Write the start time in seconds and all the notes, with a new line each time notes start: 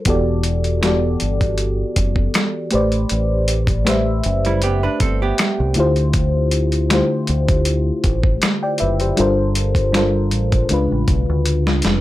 0.05 E1 E3 B3 F#4 G4 A4, kick, closed hi-hat
0.10 D5
0.43 closed hi-hat
0.64 closed hi-hat
0.81 E3 B3 F#4 G4 A4, finger snap, snare, closed hi-hat
0.86 D5
1.20 G1, closed hi-hat
1.41 kick, closed hi-hat
1.58 closed hi-hat
1.96 F#1, kick, closed hi-hat
2.16 kick
2.34 finger snap, snare, closed hi-hat
2.71 A1 A3 G4 B4 C5, closed hi-hat
2.75 D5
2.92 closed hi-hat
3.09 A1, closed hi-hat
3.48 closed hi-hat
3.67 kick, closed hi-hat
3.85 A3 G4 B4 C5, finger snap, snare, closed hi-hat
3.89 E5
4.24 F#1, closed hi-hat
4.45 G3 E4, closed hi-hat
4.62 B3 G4, closed hi-hat
4.83 D4 B4
5.00 G1 C4 A4, kick, closed hi-hat
5.22 B3 G4
5.38 finger snap, snare, closed hi-hat
5.60 C2
5.74 D2 D3 A3 E4 F4, closed hi-hat
5.79 G4 C5
5.96 closed hi-hat
6.13 kick, closed hi-hat
6.51 closed hi-hat
6.72 closed hi-hat
6.90 D3 A3 E4 F4 G4, finger snap, snare, closed hi-hat
6.94 C5
7.27 D2, closed hi-hat
7.48 kick, closed hi-hat
7.65 closed hi-hat
8.04 A1, kick, closed hi-hat
8.23 kick
8.42 finger snap, snare, closed hi-hat
8.63 D5 G5
8.78 F#1 B4 E5, closed hi-hat
9.00 G4 C5, closed hi-hat
9.16 G1 G3 D4 F4 A4 A#4, closed hi-hat
9.21 C5
9.55 closed hi-hat
9.75 kick, closed hi-hat
9.92 G3 D4 F4 A4 A#4, finger snap, snare, closed hi-hat
9.97 C5
10.31 A1, closed hi-hat
10.52 kick, closed hi-hat
10.69 C#2 C#3 G#3 D4 F4, closed hi-hat
10.74 B4
10.92 A1
11.08 B1, kick, closed hi-hat
11.29 D2
11.46 closed hi-hat
11.67 C#2, snare
11.82 F1, snare, closed hi-hat